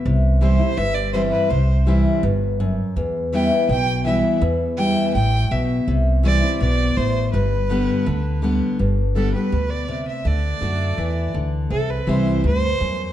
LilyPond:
<<
  \new Staff \with { instrumentName = "Fiddle" } { \time 4/4 \key g \major \tempo 4 = 165 r4 c''4 e''8 d''8 c''8 b'8 | c''4 r2. | r4 g''4 g''4 e''4 | r4 g''4 g''4 e''4 |
r4 d''4 d''4 c''4 | b'2. r4 | r4 a'8 b'4 d''4 e''8 | d''2. r4 |
a'8 b'8 c''4 c''2 | }
  \new Staff \with { instrumentName = "Steel-string acoustic guitar" } { \clef bass \time 4/4 \key g \major << { r4 <e g c' e'>8 <c' e'>8 r4 <e g c' e'>4 | r4 <e g c' e'>4 r2 | r4 <e g b e'>8 <b e'>8 r4 <e g b e'>4 | r4 <e g b e'>4 r2 |
r4 <e g c' e'>8 <c' e'>8 r2 | r4 <d g b g'>4 r4 <d g b g'>4 | r4 <d g b g'>8 <b g'>8 r2 | r4 <d a d' fis'>4 r2 |
r4 <e g c' e'>4 r2 | } \\ { c2 g,2 | c2 g,4 fis,4 | e,2 b,2 | e,2 a,4 b,4 |
c2 b,4 a,4 | g,2 d2 | g,2 b,4 c4 | d2 e4 d4 |
c2 g,4 fis,4 | } >> }
  \new Staff \with { instrumentName = "Upright bass" } { \clef bass \time 4/4 \key g \major c,2 g,,2 | c,2 g,,2 | e,2 b,,2 | e,2 a,,4 b,,4 |
c,2 b,,4 a,,4 | g,,2 d,2 | g,,2 d,2 | d,4 fis,4 e,4 d,4 |
c,4 c,4 d,4 e,4 | }
>>